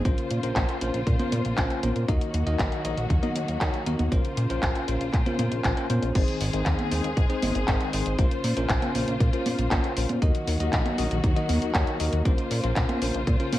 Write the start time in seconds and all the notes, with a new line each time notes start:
0.05 A#1 C#3 A#3 C#4 F4 A#4 C5, kick, closed hi-hat
0.18 closed hi-hat
0.30 A#2, closed hi-hat
0.43 A#1 C#4 F4 A#4 C5, closed hi-hat
0.56 A#1, kick, clap, closed hi-hat
0.69 closed hi-hat
0.81 A#1 C#4 F4 A#4 C5, closed hi-hat
0.94 A#1, closed hi-hat
1.07 A#2, kick, closed hi-hat
1.19 C#4 F4 A#4 C5, closed hi-hat, high conga
1.32 A#2, closed hi-hat, high conga
1.45 A#1, closed hi-hat
1.58 A#1 C#4 F4 A#4 C5, kick, clap, closed hi-hat
1.70 closed hi-hat
1.83 A#1 C#4 F4 A#4 C5, closed hi-hat, high conga
1.96 A#2, closed hi-hat
2.08 D#2 D#3 F#3 D#4 F#4 A#4 D#5, kick, closed hi-hat
2.21 closed hi-hat
2.34 D#2, closed hi-hat
2.47 D#2 D#4 F#4 A#4 D#5, closed hi-hat
2.59 A#1, kick, clap, closed hi-hat
2.72 closed hi-hat
2.85 A#1 D#4 F#4 A#4 D#5, closed hi-hat
2.97 A#1, closed hi-hat
3.10 D#2, kick, closed hi-hat
3.23 D#4 F#4 A#4 D#5, closed hi-hat, high conga
3.35 D#2, closed hi-hat
3.48 D#2, closed hi-hat
3.61 D#2 D#4 F#4 A#4 C#5, kick, clap, closed hi-hat
3.74 closed hi-hat
3.86 D#2 D#4 F#4 A#4 D#5, closed hi-hat, high conga
3.99 D#2, closed hi-hat, high conga
4.12 A#1 C#3 C#4 F4 A#4 C5, kick, closed hi-hat
4.25 closed hi-hat
4.37 A#2, closed hi-hat
4.50 A#1 C#4 F4 A#4 C5, closed hi-hat
4.63 A#1, kick, clap, closed hi-hat
4.75 closed hi-hat
4.88 A#1 C#4 F4 A#4 C5, closed hi-hat
5.01 A#1, closed hi-hat
5.13 A#2, kick, clap, closed hi-hat
5.26 C#4 F4 A#4 C5, closed hi-hat, high conga
5.39 A#2 C#4 F4 A#4 C5, closed hi-hat, high conga
5.52 A#1, closed hi-hat
5.64 A#1, kick, clap, closed hi-hat
5.77 C#4 F4 A#4 C5, closed hi-hat
5.90 A#2 C#4 F4 A#4 C5, closed hi-hat, high conga
6.02 A#1, closed hi-hat
6.15 G#1 D#3 G#3 C4 D#4 G#4 C5, kick, closed hi-hat, crash
6.28 closed hi-hat
6.41 G#1, open hi-hat
6.53 G#1 C4 D#4 G#4 C5, closed hi-hat
6.66 D#2, kick, clap, closed hi-hat
6.79 closed hi-hat, high conga
6.92 D#2 C4 D#4 G#4 C5, open hi-hat
7.04 D#2, closed hi-hat
7.17 G#1, kick, closed hi-hat
7.30 C4 D#4 G#4 C5, closed hi-hat
7.42 G#1, open hi-hat, high conga
7.55 G#1, closed hi-hat
7.68 G#1 C4 D#4 G#4 A#4, kick, clap, closed hi-hat
7.81 closed hi-hat
7.93 G#1 C4 D#4 G#4 C5, open hi-hat
8.06 G#1, closed hi-hat
8.19 A#1 C#3 A#3 C#4 F4 A#4 C5, kick, closed hi-hat
8.31 closed hi-hat
8.44 A#2, open hi-hat
8.57 A#1 C#4 F4 A#4 C5, closed hi-hat
8.69 A#1, kick, clap, closed hi-hat
8.82 closed hi-hat, high conga
8.95 A#1 C#4 F4 A#4 C5, open hi-hat
9.08 A#1, closed hi-hat
9.20 A#2, kick, closed hi-hat
9.33 C#4 F4 A#4 C5, closed hi-hat
9.46 A#2, open hi-hat, high conga
9.58 A#1, closed hi-hat
9.71 A#1 C#4 F4 A#4 C5, kick, clap, closed hi-hat
9.84 closed hi-hat
9.97 A#1 C#4 F4 A#4 C5, open hi-hat
10.09 A#2, closed hi-hat, high conga
10.22 D#2 D#3 F#3 A#3 D#4 F#4 A#4 D#5, kick, closed hi-hat
10.35 closed hi-hat
10.47 D#2, open hi-hat
10.60 D#2 D#4 F#4 A#4 D#5, closed hi-hat
10.73 A#1, kick, clap, closed hi-hat
10.86 closed hi-hat, high conga
10.98 A#1 D#4 F#4 A#4 D#5, open hi-hat
11.11 A#1, closed hi-hat
11.24 D#2, kick, closed hi-hat
11.36 D#4 F#4 A#4 D#5, closed hi-hat
11.49 D#2, open hi-hat, high conga
11.62 D#2, closed hi-hat
11.75 D#2 D#4 F#4 A#4 C#5, kick, clap, closed hi-hat
11.87 closed hi-hat
12.00 D#2 D#4 F#4 A#4 D#5, open hi-hat
12.13 D#2, closed hi-hat
12.25 A#1 C#3 C#4 F4 A#4 C5, kick, closed hi-hat
12.38 closed hi-hat
12.51 A#2, open hi-hat
12.64 A#1 C#4 F4 A#4 C5, closed hi-hat
12.76 A#1, kick, clap, closed hi-hat
12.89 closed hi-hat, high conga
13.02 A#1 C#4 F4 A#4 C5, open hi-hat
13.14 A#1, closed hi-hat
13.27 A#2, kick, closed hi-hat
13.40 C#4 F4 A#4 C5, closed hi-hat
13.53 A#2 C#4 F4 A#4 C5, open hi-hat, high conga